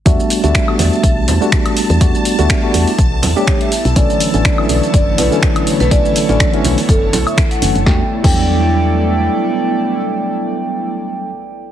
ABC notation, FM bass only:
X:1
M:4/4
L:1/16
Q:"Swing 16ths" 1/4=123
K:Edor
V:1 name="FM bass" clef=bass
E,, z2 D,, z2 E,, z B,,,2 E,, z4 E,, | E,, z2 D,, z2 E,, z B,,,2 E,, z4 B,,, | B,,, z2 A,,, z2 B,,, z F,,,2 B,,, z4 B,,, | B,,, z2 A,,, z2 B,,, z F,,,2 B,,, z3 F,,, F,,, |
E,, z2 E,,8- E,, z4 | z16 |]